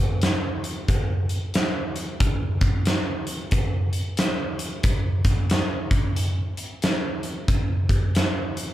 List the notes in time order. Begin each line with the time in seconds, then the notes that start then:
0.22 snare, closed hi-hat
0.64 closed hi-hat
0.88 kick, closed hi-hat
1.29 closed hi-hat
1.54 snare, closed hi-hat
1.96 closed hi-hat
2.20 kick, closed hi-hat
2.61 kick, closed hi-hat
2.85 snare, closed hi-hat
3.27 closed hi-hat
3.51 kick, closed hi-hat
3.93 closed hi-hat
4.17 snare, closed hi-hat
4.59 closed hi-hat
4.83 kick, closed hi-hat
5.25 kick, closed hi-hat
5.50 snare, closed hi-hat
5.91 kick, closed hi-hat
6.16 closed hi-hat
6.57 closed hi-hat
6.82 snare, closed hi-hat
7.23 closed hi-hat
7.48 kick, closed hi-hat
7.89 kick, closed hi-hat
8.15 snare, closed hi-hat
8.57 closed hi-hat